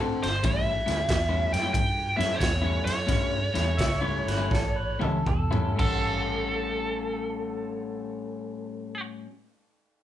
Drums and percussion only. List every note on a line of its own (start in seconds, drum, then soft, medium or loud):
0.23 snare soft
0.23 ride medium
0.44 kick medium
0.44 ride medium
0.88 snare soft
0.88 ride medium
1.09 kick medium
1.09 snare loud
1.09 ride medium
1.54 snare soft
1.54 ride medium
1.74 kick medium
1.74 ride medium
2.20 snare soft
2.20 ride medium
2.41 kick medium
2.41 snare loud
2.41 ride medium
2.87 snare soft
2.87 ride medium
3.08 kick medium
3.08 snare soft
3.08 ride medium
3.55 snare soft
3.55 ride medium
3.79 kick medium
3.79 snare loud
3.79 ride medium
4.28 snare soft
4.28 ride medium
4.51 kick medium
4.51 snare medium
5.01 high tom medium
5.26 kick medium
5.26 mid tom medium
5.53 mid tom loud
5.79 kick loud
5.79 crash loud